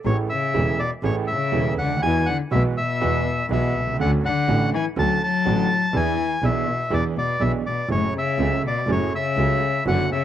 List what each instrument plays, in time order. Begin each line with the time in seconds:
0.05 double bass A1, grand piano A1 A2 E3 A3 C#4 G#4, cello A2, bandoneon C#5
0.30 cello C#3, bandoneon E5
0.54 grand piano E1 E2 E3 A3 C#4 G#4, double bass E1
0.80 cello B2, bandoneon D5
1.03 double bass A1, grand piano A1 A2 E3 A3 C#4 G#4, cello A2, bandoneon C#5
1.27 cello C#3, bandoneon E5
1.52 double bass E1, grand piano E1 E2 E3 A3 C#4 G#4
1.78 double bass D2, cello D3, bandoneon F#5
1.84 grand piano C#2
1.90 grand piano D2
1.97 grand piano D#2
2.02 grand piano E2 E3 G#3 B3 F#4, double bass E2, cello E3, bandoneon G#5
2.26 cello D3, bandoneon F#5
2.51 grand piano B1 B2 E3 G#3 B3 F#4, double bass B1, cello B2, bandoneon E5
2.77 cello B2, bandoneon E5
3.01 grand piano E2 E3 G#3 B3 F#4, double bass E2
3.50 double bass B1, grand piano B1 B2 E3 G#3 B3 F#4, cello B2, bandoneon E5
3.75 double bass C2
3.79 grand piano B1
3.87 grand piano C2
3.94 grand piano C#2
3.99 grand piano D2 D3 A3 C#4 F#4, double bass D2, cello D3, bandoneon F#5
4.25 cello D3, bandoneon F#5
4.48 double bass A1, grand piano A1 A2 D3 A3 C#4 F#4
4.73 cello E3, bandoneon G#5
4.96 grand piano D2 D3 A3 C#4 F#4, double bass D2, cello F#3, bandoneon A5
5.22 cello F#3, bandoneon A5
5.45 double bass A1, grand piano A1 A2 D3 A3 C#4 F#4
5.93 double bass E2, grand piano E2 E3 B3 D4 G#4, cello E3, bandoneon G#5
6.42 double bass B1, grand piano B1 B2 E3 B3 D4 G#4, cello B2, bandoneon E5
6.90 double bass E2, grand piano E2 E3 B3 D4 G#4, cello B2, bandoneon D5
7.16 cello B2, bandoneon D5
7.40 double bass B1, grand piano B1 B2 E3 B3 D4 G#4, cello B2, bandoneon E5
7.66 cello B2, bandoneon D5
7.89 double bass F#1, grand piano F#2 F#3 A3 C#4 G#4, cello A2, bandoneon C#5
8.16 cello C#3, bandoneon E5
8.38 double bass C#2, grand piano C#2 C#3 F#3 A3 C#4 G#4
8.65 cello B2, bandoneon D5
8.87 double bass F#1, grand piano F#2 F#3 A3 C#4 G#4
8.91 cello A2, bandoneon C#5
9.15 cello C#3, bandoneon E5
9.37 double bass C#2, grand piano C#2 C#3 F#3 A3 C#4 G#4
9.86 double bass F#1, grand piano F#2 D3 F#3 B3 C#4 F#4, cello D3, bandoneon F#5
10.12 cello C#3, bandoneon E5